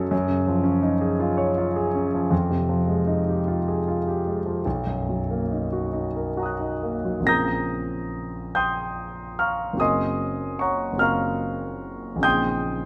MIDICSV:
0, 0, Header, 1, 2, 480
1, 0, Start_track
1, 0, Tempo, 731707
1, 78, Time_signature, 6, 3, 24, 8
1, 1518, Tempo, 778210
1, 2958, Tempo, 864553
1, 5358, Tempo, 814111
1, 7647, End_track
2, 0, Start_track
2, 0, Title_t, "Grand piano"
2, 0, Program_c, 0, 0
2, 0, Control_c, 0, 64, 127
2, 0, Note_on_c, 0, 49, 53
2, 0, Note_on_c, 0, 54, 51
2, 0, Note_on_c, 0, 61, 59
2, 0, Note_on_c, 0, 63, 54
2, 0, Note_on_c, 0, 66, 57
2, 0, Note_on_c, 0, 69, 64
2, 0, Note_on_c, 0, 73, 54
2, 0, Note_on_c, 0, 78, 44
2, 0, Note_on_c, 0, 85, 46
2, 0, Note_on_c, 0, 87, 43
2, 0, Note_on_c, 0, 93, 49
2, 68, Note_off_c, 0, 87, 0
2, 74, Note_on_c, 0, 42, 73
2, 76, Note_off_c, 0, 54, 0
2, 78, Note_off_c, 0, 93, 0
2, 89, Control_c, 0, 64, 0
2, 91, Note_off_c, 0, 69, 0
2, 91, Note_off_c, 0, 85, 0
2, 93, Note_off_c, 0, 73, 0
2, 93, Note_off_c, 0, 78, 0
2, 94, Note_off_c, 0, 61, 0
2, 95, Note_off_c, 0, 63, 0
2, 96, Note_off_c, 0, 49, 0
2, 96, Note_off_c, 0, 66, 0
2, 169, Control_c, 0, 64, 127
2, 186, Note_on_c, 0, 49, 53
2, 313, Note_on_c, 0, 53, 56
2, 386, Note_off_c, 0, 49, 0
2, 417, Note_on_c, 0, 61, 60
2, 508, Note_off_c, 0, 53, 0
2, 542, Note_on_c, 0, 63, 56
2, 617, Note_off_c, 0, 61, 0
2, 663, Note_on_c, 0, 68, 57
2, 736, Note_off_c, 0, 63, 0
2, 785, Note_on_c, 0, 65, 62
2, 855, Note_off_c, 0, 68, 0
2, 901, Note_on_c, 0, 73, 55
2, 977, Note_off_c, 0, 65, 0
2, 1034, Note_on_c, 0, 65, 58
2, 1098, Note_off_c, 0, 73, 0
2, 1155, Note_on_c, 0, 68, 60
2, 1227, Note_off_c, 0, 65, 0
2, 1279, Note_on_c, 0, 61, 52
2, 1349, Note_off_c, 0, 68, 0
2, 1407, Note_on_c, 0, 53, 50
2, 1472, Note_off_c, 0, 61, 0
2, 1489, Note_off_c, 0, 42, 0
2, 1513, Note_on_c, 0, 41, 65
2, 1523, Note_off_c, 0, 53, 0
2, 1528, Control_c, 0, 64, 0
2, 1634, Control_c, 0, 64, 127
2, 1635, Note_on_c, 0, 48, 50
2, 1751, Note_on_c, 0, 53, 50
2, 1820, Note_off_c, 0, 48, 0
2, 1864, Note_on_c, 0, 56, 51
2, 1938, Note_off_c, 0, 53, 0
2, 1986, Note_on_c, 0, 63, 51
2, 2054, Note_off_c, 0, 56, 0
2, 2117, Note_on_c, 0, 67, 46
2, 2175, Note_off_c, 0, 63, 0
2, 2237, Note_on_c, 0, 65, 52
2, 2301, Note_off_c, 0, 67, 0
2, 2360, Note_on_c, 0, 68, 52
2, 2421, Note_off_c, 0, 65, 0
2, 2484, Note_on_c, 0, 65, 50
2, 2544, Note_off_c, 0, 68, 0
2, 2607, Note_on_c, 0, 67, 50
2, 2668, Note_off_c, 0, 65, 0
2, 2726, Note_on_c, 0, 56, 43
2, 2792, Note_off_c, 0, 67, 0
2, 2842, Note_on_c, 0, 53, 44
2, 2916, Note_off_c, 0, 56, 0
2, 2930, Note_off_c, 0, 41, 0
2, 2961, Note_on_c, 0, 35, 53
2, 2963, Note_off_c, 0, 53, 0
2, 2966, Control_c, 0, 64, 0
2, 3051, Control_c, 0, 64, 127
2, 3079, Note_on_c, 0, 42, 40
2, 3202, Note_on_c, 0, 54, 40
2, 3267, Note_off_c, 0, 42, 0
2, 3322, Note_on_c, 0, 58, 44
2, 3389, Note_off_c, 0, 54, 0
2, 3441, Note_on_c, 0, 63, 44
2, 3508, Note_off_c, 0, 58, 0
2, 3556, Note_on_c, 0, 66, 43
2, 3627, Note_off_c, 0, 63, 0
2, 3669, Note_on_c, 0, 63, 47
2, 3745, Note_off_c, 0, 66, 0
2, 3798, Note_on_c, 0, 70, 44
2, 3863, Note_off_c, 0, 63, 0
2, 3914, Note_on_c, 0, 78, 32
2, 3915, Note_on_c, 0, 66, 46
2, 3928, Note_on_c, 0, 82, 35
2, 3946, Note_on_c, 0, 87, 35
2, 3962, Note_on_c, 0, 90, 35
2, 3991, Note_off_c, 0, 70, 0
2, 4039, Note_on_c, 0, 63, 44
2, 4112, Note_off_c, 0, 66, 0
2, 4169, Note_on_c, 0, 58, 44
2, 4236, Note_off_c, 0, 63, 0
2, 4292, Note_on_c, 0, 54, 43
2, 4361, Note_off_c, 0, 58, 0
2, 4375, Note_on_c, 0, 34, 42
2, 4382, Note_on_c, 0, 49, 35
2, 4384, Note_off_c, 0, 78, 0
2, 4385, Note_off_c, 0, 35, 0
2, 4390, Note_off_c, 0, 82, 0
2, 4394, Note_on_c, 0, 60, 36
2, 4400, Note_off_c, 0, 87, 0
2, 4400, Note_on_c, 0, 65, 35
2, 4407, Note_off_c, 0, 90, 0
2, 4409, Note_off_c, 0, 54, 0
2, 4411, Note_on_c, 0, 94, 85
2, 4412, Note_on_c, 0, 70, 35
2, 4416, Control_c, 0, 64, 0
2, 4419, Note_on_c, 0, 82, 65
2, 4422, Note_on_c, 0, 87, 58
2, 4423, Note_on_c, 0, 91, 62
2, 4516, Control_c, 0, 64, 127
2, 5102, Note_off_c, 0, 82, 0
2, 5103, Note_off_c, 0, 87, 0
2, 5104, Note_off_c, 0, 91, 0
2, 5121, Note_off_c, 0, 94, 0
2, 5124, Note_on_c, 0, 91, 76
2, 5128, Note_on_c, 0, 79, 58
2, 5129, Note_on_c, 0, 84, 62
2, 5132, Note_on_c, 0, 87, 60
2, 5584, Note_off_c, 0, 79, 0
2, 5585, Note_off_c, 0, 84, 0
2, 5586, Note_off_c, 0, 87, 0
2, 5604, Note_on_c, 0, 89, 68
2, 5606, Note_off_c, 0, 91, 0
2, 5607, Note_on_c, 0, 82, 47
2, 5608, Note_on_c, 0, 85, 48
2, 5614, Note_on_c, 0, 77, 49
2, 5801, Note_off_c, 0, 34, 0
2, 5805, Note_off_c, 0, 49, 0
2, 5806, Note_on_c, 0, 30, 43
2, 5811, Note_off_c, 0, 60, 0
2, 5814, Note_off_c, 0, 65, 0
2, 5814, Note_on_c, 0, 49, 35
2, 5821, Note_off_c, 0, 70, 0
2, 5821, Note_on_c, 0, 60, 34
2, 5826, Note_off_c, 0, 82, 0
2, 5827, Note_off_c, 0, 85, 0
2, 5830, Note_off_c, 0, 77, 0
2, 5830, Note_on_c, 0, 66, 36
2, 5842, Note_off_c, 0, 89, 0
2, 5842, Note_on_c, 0, 70, 35
2, 5845, Note_on_c, 0, 87, 75
2, 5850, Control_c, 0, 64, 0
2, 5850, Note_on_c, 0, 80, 54
2, 5851, Note_on_c, 0, 75, 59
2, 5855, Note_on_c, 0, 84, 57
2, 5955, Control_c, 0, 64, 127
2, 6300, Note_off_c, 0, 80, 0
2, 6301, Note_off_c, 0, 75, 0
2, 6303, Note_off_c, 0, 84, 0
2, 6314, Note_on_c, 0, 85, 67
2, 6322, Note_off_c, 0, 87, 0
2, 6324, Note_on_c, 0, 73, 50
2, 6325, Note_on_c, 0, 82, 50
2, 6327, Note_on_c, 0, 78, 51
2, 6502, Note_off_c, 0, 30, 0
2, 6510, Note_on_c, 0, 30, 39
2, 6514, Note_off_c, 0, 49, 0
2, 6522, Note_on_c, 0, 49, 35
2, 6526, Note_off_c, 0, 60, 0
2, 6532, Note_off_c, 0, 66, 0
2, 6535, Note_on_c, 0, 60, 35
2, 6540, Note_off_c, 0, 70, 0
2, 6541, Note_on_c, 0, 66, 36
2, 6547, Note_off_c, 0, 73, 0
2, 6547, Note_off_c, 0, 82, 0
2, 6548, Note_off_c, 0, 78, 0
2, 6550, Note_on_c, 0, 89, 79
2, 6552, Note_on_c, 0, 70, 35
2, 6556, Note_off_c, 0, 85, 0
2, 6560, Note_on_c, 0, 82, 57
2, 6563, Note_on_c, 0, 77, 57
2, 6565, Note_on_c, 0, 85, 55
2, 7237, Note_on_c, 0, 34, 46
2, 7238, Note_off_c, 0, 49, 0
2, 7240, Note_off_c, 0, 30, 0
2, 7247, Note_on_c, 0, 49, 39
2, 7249, Note_off_c, 0, 60, 0
2, 7256, Note_off_c, 0, 66, 0
2, 7258, Note_on_c, 0, 60, 37
2, 7262, Note_off_c, 0, 70, 0
2, 7264, Note_off_c, 0, 82, 0
2, 7265, Note_off_c, 0, 77, 0
2, 7266, Note_off_c, 0, 85, 0
2, 7266, Note_on_c, 0, 63, 37
2, 7277, Note_on_c, 0, 68, 38
2, 7278, Note_on_c, 0, 91, 91
2, 7282, Note_off_c, 0, 89, 0
2, 7285, Note_on_c, 0, 87, 67
2, 7286, Note_on_c, 0, 79, 70
2, 7289, Note_on_c, 0, 84, 68
2, 7298, Control_c, 0, 64, 0
2, 7379, Control_c, 0, 64, 127
2, 7647, Note_off_c, 0, 34, 0
2, 7647, Note_off_c, 0, 49, 0
2, 7647, Note_off_c, 0, 60, 0
2, 7647, Note_off_c, 0, 63, 0
2, 7647, Note_off_c, 0, 68, 0
2, 7647, Note_off_c, 0, 79, 0
2, 7647, Note_off_c, 0, 84, 0
2, 7647, Note_off_c, 0, 87, 0
2, 7647, Note_off_c, 0, 91, 0
2, 7647, End_track
0, 0, End_of_file